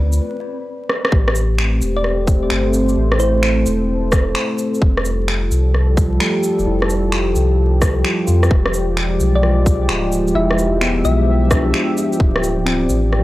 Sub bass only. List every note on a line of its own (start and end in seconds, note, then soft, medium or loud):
0.00 0.20 D2 medium
1.12 1.81 A1 medium
1.81 2.50 E1 medium
2.51 2.96 G1 medium
2.97 3.65 A1 loud
3.67 4.35 E1 medium
4.82 5.50 F1 loud
5.51 6.19 C2 medium
6.59 6.66 F1 medium
6.67 7.35 F1 loud
7.36 8.04 C2 medium
8.28 8.50 F2 medium
8.51 9.19 E1 loud
9.20 9.88 B1 medium
9.89 10.35 D1 medium
10.35 11.04 E1 loud
11.05 11.73 B1 medium
12.20 12.88 D1 loud
12.89 13.24 A1 medium